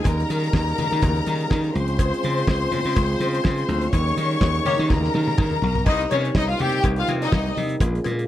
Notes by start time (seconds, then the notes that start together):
Already playing: D#4
0.04 D#2 C#3 G3 A#3 A#4 A#5, kick, closed hi-hat, cowbell, muted conga
0.20 closed hi-hat
0.29 D#3, closed hi-hat, muted conga
0.44 closed hi-hat
0.53 D#2, kick, snare, cowbell, high conga
0.68 closed hi-hat
0.78 D#3, closed hi-hat, low conga
0.91 D#3, closed hi-hat
1.02 D#2, kick, closed hi-hat, cowbell, muted conga, low conga
1.15 closed hi-hat
1.26 D#3, closed hi-hat, muted conga
1.41 closed hi-hat
1.50 D#3, kick, snare, cowbell, high conga
1.64 closed hi-hat
1.74 C#2 G#3 C4 F4 C5 C6, closed hi-hat, high conga
1.88 closed hi-hat
1.99 kick, closed hi-hat, cowbell
2.14 closed hi-hat
2.23 C#3, closed hi-hat, muted conga
2.38 closed hi-hat
2.47 C#2, kick, snare, cowbell, high conga
2.62 closed hi-hat
2.71 C#3, closed hi-hat, low conga
2.85 C#3, closed hi-hat
2.96 C#2, kick, closed hi-hat, cowbell, muted conga
3.09 closed hi-hat
3.20 C#3, closed hi-hat, muted conga
3.34 closed hi-hat
3.44 C#3, kick, snare, cowbell, high conga
3.58 closed hi-hat
3.69 D2, closed hi-hat, high conga
3.81 closed hi-hat
3.92 D#2 C#3 G3 A#3 D#4 C#5 C#6, kick, closed hi-hat, cowbell, muted conga
4.08 closed hi-hat
4.16 D#3, closed hi-hat, muted conga
4.31 closed hi-hat
4.41 D#2, kick, snare, cowbell, high conga
4.55 closed hi-hat
4.65 D#3 A#3 G4 C#5, closed hi-hat, low conga
4.78 D#3, snare, closed hi-hat
4.90 D#2 A#4 A#5, kick, snare, cowbell, muted conga, low conga
5.04 snare
5.14 D#3, high tom, muted conga
5.28 high tom
5.38 D#3, kick, mid tom, cowbell, high conga
5.51 mid tom
5.62 B1, floor tom, high conga
5.75 floor tom
5.86 C2 C3 G3 A#3 D#4 D#5, kick, crash, cowbell
6.01 closed hi-hat
6.11 C3 C#4 C#5, closed hi-hat, cowbell, muted conga
6.25 closed hi-hat
6.35 C2 D#4 D#5, kick, snare, cowbell, high conga
6.49 F4 F5, closed hi-hat
6.59 C3 G4 G5, closed hi-hat, low conga
6.72 snare, closed hi-hat
6.83 C2, kick, closed hi-hat, cowbell, muted conga
6.96 F4 F5, closed hi-hat
7.07 C3, closed hi-hat, cowbell, muted conga
7.22 D#4 D#5, closed hi-hat
7.32 C2, kick, snare, cowbell, high conga
7.46 closed hi-hat
7.57 C3, open hi-hat, high conga
7.69 closed hi-hat
7.80 A#1 C#3 G#3 F4, kick, closed hi-hat, cowbell
7.95 closed hi-hat
8.04 A#2, closed hi-hat, cowbell, muted conga
8.19 closed hi-hat